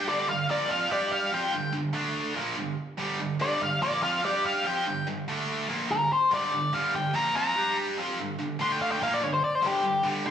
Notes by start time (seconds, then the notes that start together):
0.07 G2 D3 G3 D5
0.29 G2 D3 F5
0.49 A#2 F3 A#3 D5
0.69 F3 C4 F4 F5
0.90 G3 D4 G4 D5
1.13 F5
1.32 F3 C4 F4 G5
1.52 G2 D3
1.72 G2 D3
1.93 D3 A3 D4
2.35 A#2 F3 A#3
2.57 G2 D3
2.98 G2 D3 G3
3.19 G2 D3
3.40 G2 D3 G3 D5
3.61 G2 D3 F5
3.82 A#2 F3 A#3 D5
4.03 F3 C4 F4 F5
4.23 G3 D4 G4 D5
4.46 F5
4.65 F3 C4 F4 G5
4.86 G2 D3
5.07 G2 D3
5.28 D3 A3 D4
5.69 A#2 F3 A#3
5.90 G2 D3 A#4
6.13 C5
6.31 G2 D3 G3 D5
6.52 G2 D3
6.73 G2 D3 G3 F5
6.94 G2 D3 G5
7.14 A#2 F3 A#3 A#5
7.35 F3 C4 F4 A#5
7.57 G3 D4 G4
7.98 F3 C4 F4
8.18 G2 D3
8.39 G2 D3
8.59 D3 A3 D4 C6
8.72 G5
8.82 F5
8.92 G5
9.00 A#2 F3 A#3 F5
9.14 D5
9.22 G2 D3 C#5
9.34 C5
9.44 D5
9.55 C5
9.62 G2 D3 G3
9.67 G4
9.83 G2 D3
10.03 G2 D3 G3
10.24 G2 D3 C6